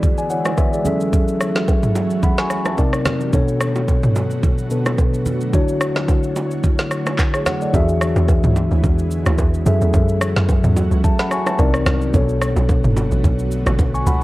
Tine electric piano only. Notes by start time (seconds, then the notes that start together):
Already playing: E3 B3 F#4 G#4 D5
0.18 D5 G#5
0.30 C#5 F#5
0.58 B4 E5
0.73 G#4 D5
0.84 F#3 C#4 G#4 A4 E5
2.23 F#5 B5
2.38 G#5 C#6
2.66 E5 A5
2.78 C3 C4 D#4 A#4 D5
3.32 B2 B3 D4 A4 C#5
4.70 B2 B3 D4 A4 B4
5.52 D3 D4 E4 F#4 C#5
7.34 G#4 C#5
7.46 C#5 F#5
7.62 A4 D5
7.73 E3 D4 F#4 G#4 E5
9.65 F#3 C#4 G#4 A4 E5
11.04 E5 A5
11.19 F#5 B5
11.31 G#5 C#6
11.47 E5 A5
11.59 C3 C4 D#4 A#4 D5
12.13 B2 B3 D4 A4 C#5
13.94 G#5 C#6
14.07 F#5 B5